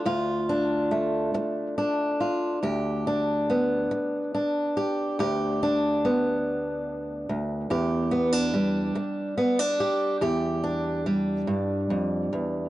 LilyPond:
\new Staff \with { instrumentName = "Steel-string acoustic guitar" } { \time 6/8 \key g \mixolydian \tempo 4. = 47 << { f'8 d'8 a4 d'8 f'8 | g'8 d'8 b4 d'8 g'8 | g'8 d'8 b2 | g'8 b16 d'16 g4 b16 d'16 g'8 |
g'8 d'8 g2 | } \\ { d,4. r4. | d,4. r4. | d,2~ d,8 d,8 | e,4. r4. |
e,4. g,8 f,8 e,8 | } >> }